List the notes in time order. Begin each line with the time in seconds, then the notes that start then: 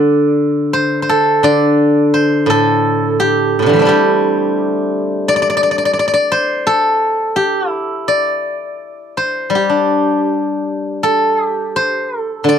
Already playing: D3 D5
0.73 C5
1.02 C5
1.09 A4
1.43 D3 D5
2.14 C5
2.46 A2 A4
3.20 G4
3.59 A2 C3
3.66 D3 E3
3.73 G3 A3
3.79 C4 D4
3.85 G3 E4 G4
5.28 D5
5.36 D5
5.42 D5
5.50 D5
5.57 D5
5.63 D5
5.71 D5
5.78 D5
5.85 D5
5.93 D5
5.99 D5
6.08 D5
6.14 D5
6.32 C5
6.67 A4
7.36 G4
7.69 E4
8.08 D5
9.17 C5
9.50 G3
9.55 G4
9.70 D4
11.03 A4
11.46 G4
11.76 C5
12.21 A4
12.44 D3
12.49 D5